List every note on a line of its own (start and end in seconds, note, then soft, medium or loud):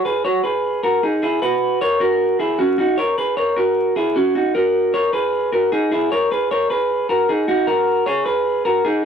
0.05 0.25 G#4 medium
0.05 0.24 B4 medium
0.25 0.44 F#4 medium
0.25 0.43 C#5 medium
0.44 0.81 G#4 medium
0.44 0.81 B4 medium
0.83 1.03 F#4 medium
0.83 1.03 A#4 medium
1.03 1.23 D#4 medium
1.03 1.22 G#4 medium
1.23 1.42 E4 medium
1.23 1.42 G#4 medium
1.42 1.79 F#4 medium
1.42 1.79 B4 medium
1.81 1.99 A#4 medium
1.81 2.01 C#5 loud
2.00 2.38 F#4 medium
2.00 2.37 A#4 medium
2.39 2.60 E4 medium
2.39 2.59 G#4 medium
2.59 2.79 C#4 medium
2.59 2.77 F#4 medium
2.78 2.99 D#4 medium
2.78 2.98 F#4 medium
2.98 3.18 A#4 medium
2.98 3.18 C#5 medium
3.18 3.37 G#4 soft
3.18 3.36 B4 medium
3.37 3.55 A#4 medium
3.37 3.57 C#5 medium
3.56 3.94 F#4 medium
3.56 3.94 A#4 medium
3.96 4.16 E4 medium
3.96 4.16 G#4 medium
4.16 4.36 C#4 medium
4.16 4.34 F#4 medium
4.35 4.55 D#4 medium
4.35 4.54 F#4 medium
4.55 4.92 F#4 medium
4.55 4.92 A#4 medium
4.94 5.13 A#4 medium
4.94 5.13 C#5 loud
5.13 5.51 G#4 medium
5.13 5.50 B4 medium
5.53 5.73 F#4 medium
5.53 5.72 A#4 medium
5.72 5.92 D#4 medium
5.72 5.90 G#4 medium
5.92 6.11 E4 medium
5.92 6.11 G#4 medium
6.12 6.32 A#4 medium
6.12 6.31 C#5 medium
6.32 6.51 G#4 medium
6.32 6.51 B4 medium
6.51 6.71 A#4 medium
6.51 6.70 C#5 medium
6.70 7.07 G#4 medium
6.70 7.07 B4 medium
7.09 7.29 F#4 medium
7.09 7.29 A#4 medium
7.29 7.48 D#4 medium
7.29 7.48 G#4 medium
7.48 7.68 D#4 medium
7.48 7.67 F#4 medium
7.67 8.05 F#4 medium
7.67 8.04 A#4 medium
8.06 8.25 G#4 medium
8.06 8.25 C#5 loud
8.26 8.63 G#4 medium
8.26 8.63 B4 medium
8.65 8.84 F#4 medium
8.65 8.85 A#4 medium
8.85 9.05 D#4 medium
8.85 9.03 G#4 medium